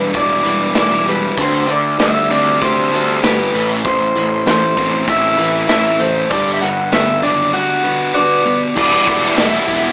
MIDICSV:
0, 0, Header, 1, 7, 480
1, 0, Start_track
1, 0, Key_signature, 1, "minor"
1, 0, Tempo, 616016
1, 1074, Time_signature, 4, 2, 24, 8
1, 7732, End_track
2, 0, Start_track
2, 0, Title_t, "String machine"
2, 0, Program_c, 0, 50
2, 6832, Note_on_c, 0, 55, 81
2, 6833, Note_on_c, 0, 76, 76
2, 6833, Note_on_c, 0, 86, 89
2, 7732, Note_off_c, 0, 55, 0
2, 7732, Note_off_c, 0, 76, 0
2, 7732, Note_off_c, 0, 86, 0
2, 7732, End_track
3, 0, Start_track
3, 0, Title_t, "Clean electric guitar"
3, 0, Program_c, 1, 27
3, 0, Note_on_c, 1, 71, 70
3, 127, Note_off_c, 1, 71, 0
3, 131, Note_on_c, 1, 74, 83
3, 594, Note_off_c, 1, 74, 0
3, 603, Note_on_c, 1, 74, 71
3, 845, Note_off_c, 1, 74, 0
3, 848, Note_on_c, 1, 71, 68
3, 1089, Note_off_c, 1, 71, 0
3, 1101, Note_on_c, 1, 72, 81
3, 1331, Note_off_c, 1, 72, 0
3, 1334, Note_on_c, 1, 74, 72
3, 1553, Note_off_c, 1, 74, 0
3, 1556, Note_on_c, 1, 76, 87
3, 1797, Note_off_c, 1, 76, 0
3, 1801, Note_on_c, 1, 74, 79
3, 2042, Note_off_c, 1, 74, 0
3, 2045, Note_on_c, 1, 72, 79
3, 2523, Note_off_c, 1, 72, 0
3, 2526, Note_on_c, 1, 71, 77
3, 2859, Note_off_c, 1, 71, 0
3, 3003, Note_on_c, 1, 72, 84
3, 3484, Note_off_c, 1, 72, 0
3, 3493, Note_on_c, 1, 72, 77
3, 3970, Note_off_c, 1, 72, 0
3, 3973, Note_on_c, 1, 76, 92
3, 4425, Note_off_c, 1, 76, 0
3, 4434, Note_on_c, 1, 76, 93
3, 4674, Note_on_c, 1, 72, 73
3, 4685, Note_off_c, 1, 76, 0
3, 4911, Note_on_c, 1, 74, 102
3, 4925, Note_off_c, 1, 72, 0
3, 5090, Note_off_c, 1, 74, 0
3, 5093, Note_on_c, 1, 76, 74
3, 5152, Note_off_c, 1, 76, 0
3, 5155, Note_on_c, 1, 78, 91
3, 5394, Note_off_c, 1, 78, 0
3, 5397, Note_on_c, 1, 76, 97
3, 5631, Note_off_c, 1, 76, 0
3, 5634, Note_on_c, 1, 74, 91
3, 5869, Note_off_c, 1, 74, 0
3, 5873, Note_on_c, 1, 78, 98
3, 6344, Note_on_c, 1, 71, 83
3, 6345, Note_off_c, 1, 78, 0
3, 6348, Note_on_c, 1, 74, 93
3, 6684, Note_off_c, 1, 71, 0
3, 6828, Note_off_c, 1, 74, 0
3, 6838, Note_on_c, 1, 74, 101
3, 7303, Note_off_c, 1, 74, 0
3, 7306, Note_on_c, 1, 76, 101
3, 7732, Note_off_c, 1, 76, 0
3, 7732, End_track
4, 0, Start_track
4, 0, Title_t, "Distorted electric guitar"
4, 0, Program_c, 2, 30
4, 0, Note_on_c, 2, 52, 60
4, 0, Note_on_c, 2, 55, 60
4, 0, Note_on_c, 2, 62, 69
4, 106, Note_on_c, 2, 64, 64
4, 337, Note_on_c, 2, 71, 61
4, 349, Note_off_c, 2, 52, 0
4, 572, Note_off_c, 2, 64, 0
4, 581, Note_on_c, 2, 64, 67
4, 817, Note_off_c, 2, 55, 0
4, 826, Note_on_c, 2, 55, 75
4, 1063, Note_on_c, 2, 50, 62
4, 1068, Note_off_c, 2, 71, 0
4, 1069, Note_off_c, 2, 64, 0
4, 1071, Note_off_c, 2, 55, 0
4, 1071, Note_off_c, 2, 62, 0
4, 1549, Note_on_c, 2, 55, 68
4, 1796, Note_on_c, 2, 60, 62
4, 2031, Note_on_c, 2, 67, 76
4, 2272, Note_on_c, 2, 69, 66
4, 2273, Note_off_c, 2, 50, 0
4, 2500, Note_off_c, 2, 67, 0
4, 2509, Note_on_c, 2, 67, 69
4, 2752, Note_on_c, 2, 45, 79
4, 2755, Note_off_c, 2, 67, 0
4, 2757, Note_off_c, 2, 55, 0
4, 2757, Note_off_c, 2, 69, 0
4, 2760, Note_off_c, 2, 60, 0
4, 2985, Note_off_c, 2, 45, 0
4, 2994, Note_on_c, 2, 45, 62
4, 3477, Note_on_c, 2, 57, 66
4, 3717, Note_on_c, 2, 60, 64
4, 3952, Note_on_c, 2, 64, 75
4, 4186, Note_on_c, 2, 71, 68
4, 4199, Note_off_c, 2, 45, 0
4, 4422, Note_off_c, 2, 64, 0
4, 4432, Note_on_c, 2, 64, 73
4, 4667, Note_off_c, 2, 57, 0
4, 4676, Note_on_c, 2, 57, 81
4, 4905, Note_on_c, 2, 55, 59
4, 4916, Note_off_c, 2, 64, 0
4, 4918, Note_off_c, 2, 57, 0
4, 4919, Note_off_c, 2, 60, 0
4, 5388, Note_on_c, 2, 59, 70
4, 5626, Note_on_c, 2, 62, 75
4, 5867, Note_on_c, 2, 66, 84
4, 6104, Note_off_c, 2, 71, 0
4, 6107, Note_on_c, 2, 71, 68
4, 6109, Note_off_c, 2, 55, 0
4, 6334, Note_off_c, 2, 66, 0
4, 6344, Note_on_c, 2, 66, 69
4, 6578, Note_off_c, 2, 59, 0
4, 6587, Note_on_c, 2, 59, 80
4, 6822, Note_off_c, 2, 59, 0
4, 6826, Note_on_c, 2, 52, 84
4, 6828, Note_off_c, 2, 62, 0
4, 6828, Note_off_c, 2, 66, 0
4, 6828, Note_on_c, 2, 55, 92
4, 6829, Note_off_c, 2, 71, 0
4, 6831, Note_on_c, 2, 59, 97
4, 6838, Note_on_c, 2, 64, 110
4, 7046, Note_off_c, 2, 52, 0
4, 7053, Note_off_c, 2, 64, 0
4, 7055, Note_on_c, 2, 52, 84
4, 7056, Note_off_c, 2, 59, 0
4, 7058, Note_off_c, 2, 55, 0
4, 7061, Note_on_c, 2, 55, 75
4, 7062, Note_on_c, 2, 64, 99
4, 7066, Note_on_c, 2, 59, 77
4, 7290, Note_off_c, 2, 52, 0
4, 7292, Note_off_c, 2, 59, 0
4, 7296, Note_off_c, 2, 64, 0
4, 7298, Note_off_c, 2, 55, 0
4, 7299, Note_on_c, 2, 52, 78
4, 7301, Note_on_c, 2, 55, 85
4, 7301, Note_on_c, 2, 59, 85
4, 7305, Note_on_c, 2, 64, 99
4, 7524, Note_off_c, 2, 52, 0
4, 7526, Note_off_c, 2, 55, 0
4, 7528, Note_off_c, 2, 64, 0
4, 7530, Note_off_c, 2, 59, 0
4, 7533, Note_on_c, 2, 52, 94
4, 7535, Note_on_c, 2, 55, 92
4, 7538, Note_on_c, 2, 64, 113
4, 7540, Note_on_c, 2, 59, 90
4, 7732, Note_off_c, 2, 52, 0
4, 7732, Note_off_c, 2, 55, 0
4, 7732, Note_off_c, 2, 59, 0
4, 7732, Note_off_c, 2, 64, 0
4, 7732, End_track
5, 0, Start_track
5, 0, Title_t, "Overdriven electric guitar"
5, 0, Program_c, 3, 29
5, 0, Note_on_c, 3, 52, 66
5, 0, Note_on_c, 3, 55, 80
5, 80, Note_off_c, 3, 52, 0
5, 82, Note_off_c, 3, 55, 0
5, 107, Note_on_c, 3, 52, 67
5, 109, Note_on_c, 3, 55, 65
5, 325, Note_off_c, 3, 52, 0
5, 326, Note_off_c, 3, 55, 0
5, 349, Note_on_c, 3, 52, 68
5, 355, Note_on_c, 3, 55, 76
5, 567, Note_off_c, 3, 52, 0
5, 569, Note_off_c, 3, 55, 0
5, 591, Note_on_c, 3, 52, 67
5, 591, Note_on_c, 3, 55, 75
5, 808, Note_off_c, 3, 52, 0
5, 808, Note_off_c, 3, 55, 0
5, 838, Note_on_c, 3, 52, 60
5, 838, Note_on_c, 3, 55, 75
5, 1052, Note_off_c, 3, 52, 0
5, 1052, Note_off_c, 3, 55, 0
5, 1073, Note_on_c, 3, 50, 86
5, 1078, Note_on_c, 3, 57, 81
5, 1082, Note_on_c, 3, 60, 102
5, 1295, Note_off_c, 3, 50, 0
5, 1301, Note_off_c, 3, 57, 0
5, 1304, Note_on_c, 3, 50, 64
5, 1305, Note_off_c, 3, 60, 0
5, 1310, Note_on_c, 3, 57, 75
5, 1527, Note_off_c, 3, 50, 0
5, 1530, Note_off_c, 3, 57, 0
5, 1551, Note_on_c, 3, 50, 72
5, 1554, Note_on_c, 3, 57, 65
5, 1770, Note_off_c, 3, 50, 0
5, 1772, Note_off_c, 3, 57, 0
5, 1796, Note_on_c, 3, 50, 65
5, 1798, Note_on_c, 3, 57, 71
5, 2014, Note_off_c, 3, 50, 0
5, 2015, Note_off_c, 3, 57, 0
5, 2037, Note_on_c, 3, 50, 73
5, 2037, Note_on_c, 3, 57, 77
5, 2254, Note_off_c, 3, 50, 0
5, 2255, Note_off_c, 3, 57, 0
5, 2280, Note_on_c, 3, 50, 73
5, 2282, Note_on_c, 3, 57, 76
5, 2496, Note_off_c, 3, 50, 0
5, 2497, Note_off_c, 3, 57, 0
5, 2516, Note_on_c, 3, 50, 80
5, 2520, Note_on_c, 3, 57, 71
5, 2735, Note_off_c, 3, 50, 0
5, 2736, Note_off_c, 3, 57, 0
5, 2756, Note_on_c, 3, 45, 73
5, 2762, Note_on_c, 3, 52, 81
5, 2766, Note_on_c, 3, 57, 85
5, 2984, Note_off_c, 3, 45, 0
5, 2987, Note_off_c, 3, 52, 0
5, 2990, Note_off_c, 3, 57, 0
5, 2999, Note_on_c, 3, 45, 66
5, 3005, Note_on_c, 3, 52, 70
5, 3216, Note_off_c, 3, 45, 0
5, 3220, Note_off_c, 3, 52, 0
5, 3237, Note_on_c, 3, 45, 64
5, 3240, Note_on_c, 3, 52, 83
5, 3456, Note_off_c, 3, 45, 0
5, 3457, Note_off_c, 3, 52, 0
5, 3474, Note_on_c, 3, 45, 65
5, 3481, Note_on_c, 3, 52, 86
5, 3694, Note_off_c, 3, 45, 0
5, 3697, Note_off_c, 3, 52, 0
5, 3718, Note_on_c, 3, 45, 69
5, 3722, Note_on_c, 3, 52, 73
5, 3936, Note_off_c, 3, 45, 0
5, 3938, Note_off_c, 3, 52, 0
5, 3953, Note_on_c, 3, 45, 65
5, 3954, Note_on_c, 3, 52, 78
5, 4173, Note_off_c, 3, 45, 0
5, 4174, Note_off_c, 3, 52, 0
5, 4194, Note_on_c, 3, 45, 69
5, 4197, Note_on_c, 3, 52, 79
5, 4414, Note_off_c, 3, 45, 0
5, 4415, Note_off_c, 3, 52, 0
5, 4429, Note_on_c, 3, 45, 69
5, 4438, Note_on_c, 3, 52, 85
5, 4651, Note_off_c, 3, 45, 0
5, 4656, Note_off_c, 3, 52, 0
5, 4666, Note_on_c, 3, 45, 58
5, 4670, Note_on_c, 3, 52, 73
5, 4890, Note_off_c, 3, 45, 0
5, 4891, Note_off_c, 3, 52, 0
5, 4912, Note_on_c, 3, 43, 78
5, 4921, Note_on_c, 3, 50, 89
5, 4922, Note_on_c, 3, 55, 93
5, 5142, Note_off_c, 3, 43, 0
5, 5146, Note_off_c, 3, 50, 0
5, 5147, Note_off_c, 3, 55, 0
5, 5152, Note_on_c, 3, 43, 66
5, 5155, Note_on_c, 3, 50, 75
5, 5372, Note_off_c, 3, 43, 0
5, 5373, Note_off_c, 3, 50, 0
5, 5394, Note_on_c, 3, 43, 67
5, 5398, Note_on_c, 3, 50, 72
5, 5613, Note_off_c, 3, 43, 0
5, 5614, Note_off_c, 3, 50, 0
5, 5631, Note_on_c, 3, 43, 65
5, 5637, Note_on_c, 3, 50, 73
5, 5851, Note_off_c, 3, 43, 0
5, 5854, Note_off_c, 3, 50, 0
5, 5877, Note_on_c, 3, 50, 76
5, 5879, Note_on_c, 3, 43, 68
5, 6093, Note_off_c, 3, 50, 0
5, 6094, Note_off_c, 3, 43, 0
5, 6112, Note_on_c, 3, 43, 65
5, 6118, Note_on_c, 3, 50, 72
5, 6330, Note_off_c, 3, 43, 0
5, 6333, Note_off_c, 3, 50, 0
5, 6357, Note_on_c, 3, 50, 79
5, 6360, Note_on_c, 3, 43, 71
5, 6572, Note_off_c, 3, 50, 0
5, 6574, Note_off_c, 3, 43, 0
5, 6589, Note_on_c, 3, 43, 67
5, 6593, Note_on_c, 3, 50, 66
5, 6808, Note_off_c, 3, 43, 0
5, 6809, Note_off_c, 3, 50, 0
5, 6820, Note_on_c, 3, 52, 87
5, 6830, Note_on_c, 3, 55, 97
5, 6833, Note_on_c, 3, 59, 102
5, 6833, Note_on_c, 3, 64, 103
5, 7049, Note_off_c, 3, 52, 0
5, 7057, Note_off_c, 3, 59, 0
5, 7058, Note_on_c, 3, 52, 79
5, 7062, Note_off_c, 3, 64, 0
5, 7065, Note_off_c, 3, 55, 0
5, 7067, Note_on_c, 3, 59, 98
5, 7068, Note_on_c, 3, 55, 75
5, 7071, Note_on_c, 3, 64, 89
5, 7298, Note_off_c, 3, 52, 0
5, 7305, Note_off_c, 3, 55, 0
5, 7305, Note_off_c, 3, 59, 0
5, 7306, Note_off_c, 3, 64, 0
5, 7307, Note_on_c, 3, 52, 74
5, 7309, Note_on_c, 3, 55, 83
5, 7315, Note_on_c, 3, 59, 87
5, 7316, Note_on_c, 3, 64, 71
5, 7530, Note_off_c, 3, 52, 0
5, 7537, Note_off_c, 3, 55, 0
5, 7539, Note_on_c, 3, 52, 75
5, 7541, Note_off_c, 3, 59, 0
5, 7546, Note_off_c, 3, 64, 0
5, 7546, Note_on_c, 3, 55, 82
5, 7550, Note_on_c, 3, 59, 94
5, 7555, Note_on_c, 3, 64, 89
5, 7732, Note_off_c, 3, 52, 0
5, 7732, Note_off_c, 3, 55, 0
5, 7732, Note_off_c, 3, 59, 0
5, 7732, Note_off_c, 3, 64, 0
5, 7732, End_track
6, 0, Start_track
6, 0, Title_t, "Picked electric bass"
6, 0, Program_c, 4, 34
6, 113, Note_on_c, 4, 28, 82
6, 320, Note_off_c, 4, 28, 0
6, 350, Note_on_c, 4, 28, 82
6, 559, Note_off_c, 4, 28, 0
6, 590, Note_on_c, 4, 28, 85
6, 1008, Note_off_c, 4, 28, 0
6, 1078, Note_on_c, 4, 38, 83
6, 1285, Note_off_c, 4, 38, 0
6, 1307, Note_on_c, 4, 38, 80
6, 1520, Note_off_c, 4, 38, 0
6, 1548, Note_on_c, 4, 38, 81
6, 1760, Note_off_c, 4, 38, 0
6, 1793, Note_on_c, 4, 38, 71
6, 2003, Note_off_c, 4, 38, 0
6, 2044, Note_on_c, 4, 38, 93
6, 2250, Note_off_c, 4, 38, 0
6, 2279, Note_on_c, 4, 38, 86
6, 2488, Note_off_c, 4, 38, 0
6, 2521, Note_on_c, 4, 31, 77
6, 2729, Note_off_c, 4, 31, 0
6, 2757, Note_on_c, 4, 33, 87
6, 2967, Note_off_c, 4, 33, 0
6, 3001, Note_on_c, 4, 33, 86
6, 3209, Note_off_c, 4, 33, 0
6, 3249, Note_on_c, 4, 33, 87
6, 3454, Note_off_c, 4, 33, 0
6, 3479, Note_on_c, 4, 33, 74
6, 3688, Note_off_c, 4, 33, 0
6, 3723, Note_on_c, 4, 33, 78
6, 3930, Note_off_c, 4, 33, 0
6, 3960, Note_on_c, 4, 33, 78
6, 4168, Note_off_c, 4, 33, 0
6, 4195, Note_on_c, 4, 33, 84
6, 4406, Note_off_c, 4, 33, 0
6, 4439, Note_on_c, 4, 33, 94
6, 4856, Note_off_c, 4, 33, 0
6, 4918, Note_on_c, 4, 31, 93
6, 5127, Note_off_c, 4, 31, 0
6, 5162, Note_on_c, 4, 31, 79
6, 5369, Note_off_c, 4, 31, 0
6, 5397, Note_on_c, 4, 31, 89
6, 5605, Note_off_c, 4, 31, 0
6, 5650, Note_on_c, 4, 30, 84
6, 5852, Note_off_c, 4, 30, 0
6, 6834, Note_on_c, 4, 28, 92
6, 6982, Note_off_c, 4, 28, 0
6, 7071, Note_on_c, 4, 28, 84
6, 7220, Note_off_c, 4, 28, 0
6, 7316, Note_on_c, 4, 28, 94
6, 7463, Note_off_c, 4, 28, 0
6, 7550, Note_on_c, 4, 28, 83
6, 7698, Note_off_c, 4, 28, 0
6, 7732, End_track
7, 0, Start_track
7, 0, Title_t, "Drums"
7, 110, Note_on_c, 9, 36, 101
7, 112, Note_on_c, 9, 42, 80
7, 188, Note_off_c, 9, 36, 0
7, 190, Note_off_c, 9, 42, 0
7, 349, Note_on_c, 9, 42, 65
7, 427, Note_off_c, 9, 42, 0
7, 585, Note_on_c, 9, 42, 85
7, 587, Note_on_c, 9, 38, 106
7, 663, Note_off_c, 9, 42, 0
7, 665, Note_off_c, 9, 38, 0
7, 837, Note_on_c, 9, 42, 62
7, 915, Note_off_c, 9, 42, 0
7, 1071, Note_on_c, 9, 42, 93
7, 1072, Note_on_c, 9, 36, 100
7, 1149, Note_off_c, 9, 42, 0
7, 1150, Note_off_c, 9, 36, 0
7, 1311, Note_on_c, 9, 42, 69
7, 1389, Note_off_c, 9, 42, 0
7, 1556, Note_on_c, 9, 42, 88
7, 1557, Note_on_c, 9, 38, 105
7, 1634, Note_off_c, 9, 42, 0
7, 1635, Note_off_c, 9, 38, 0
7, 1803, Note_on_c, 9, 42, 56
7, 1881, Note_off_c, 9, 42, 0
7, 2038, Note_on_c, 9, 42, 79
7, 2039, Note_on_c, 9, 36, 97
7, 2116, Note_off_c, 9, 42, 0
7, 2117, Note_off_c, 9, 36, 0
7, 2286, Note_on_c, 9, 42, 61
7, 2364, Note_off_c, 9, 42, 0
7, 2522, Note_on_c, 9, 42, 84
7, 2523, Note_on_c, 9, 38, 106
7, 2600, Note_off_c, 9, 42, 0
7, 2601, Note_off_c, 9, 38, 0
7, 2765, Note_on_c, 9, 42, 56
7, 2843, Note_off_c, 9, 42, 0
7, 2996, Note_on_c, 9, 42, 81
7, 2999, Note_on_c, 9, 36, 99
7, 3074, Note_off_c, 9, 42, 0
7, 3076, Note_off_c, 9, 36, 0
7, 3243, Note_on_c, 9, 42, 57
7, 3321, Note_off_c, 9, 42, 0
7, 3483, Note_on_c, 9, 42, 86
7, 3485, Note_on_c, 9, 38, 102
7, 3561, Note_off_c, 9, 42, 0
7, 3563, Note_off_c, 9, 38, 0
7, 3719, Note_on_c, 9, 36, 64
7, 3723, Note_on_c, 9, 42, 54
7, 3797, Note_off_c, 9, 36, 0
7, 3801, Note_off_c, 9, 42, 0
7, 3957, Note_on_c, 9, 36, 96
7, 3957, Note_on_c, 9, 42, 84
7, 4035, Note_off_c, 9, 36, 0
7, 4035, Note_off_c, 9, 42, 0
7, 4198, Note_on_c, 9, 42, 62
7, 4276, Note_off_c, 9, 42, 0
7, 4435, Note_on_c, 9, 42, 90
7, 4437, Note_on_c, 9, 38, 111
7, 4513, Note_off_c, 9, 42, 0
7, 4515, Note_off_c, 9, 38, 0
7, 4676, Note_on_c, 9, 42, 62
7, 4754, Note_off_c, 9, 42, 0
7, 4911, Note_on_c, 9, 42, 90
7, 4916, Note_on_c, 9, 36, 100
7, 4989, Note_off_c, 9, 42, 0
7, 4994, Note_off_c, 9, 36, 0
7, 5160, Note_on_c, 9, 42, 72
7, 5238, Note_off_c, 9, 42, 0
7, 5396, Note_on_c, 9, 42, 89
7, 5398, Note_on_c, 9, 38, 114
7, 5474, Note_off_c, 9, 42, 0
7, 5476, Note_off_c, 9, 38, 0
7, 5639, Note_on_c, 9, 42, 64
7, 5717, Note_off_c, 9, 42, 0
7, 6832, Note_on_c, 9, 36, 104
7, 6834, Note_on_c, 9, 49, 120
7, 6910, Note_off_c, 9, 36, 0
7, 6912, Note_off_c, 9, 49, 0
7, 7070, Note_on_c, 9, 36, 83
7, 7148, Note_off_c, 9, 36, 0
7, 7304, Note_on_c, 9, 39, 80
7, 7306, Note_on_c, 9, 46, 57
7, 7307, Note_on_c, 9, 38, 125
7, 7382, Note_off_c, 9, 39, 0
7, 7384, Note_off_c, 9, 46, 0
7, 7385, Note_off_c, 9, 38, 0
7, 7545, Note_on_c, 9, 36, 72
7, 7623, Note_off_c, 9, 36, 0
7, 7732, End_track
0, 0, End_of_file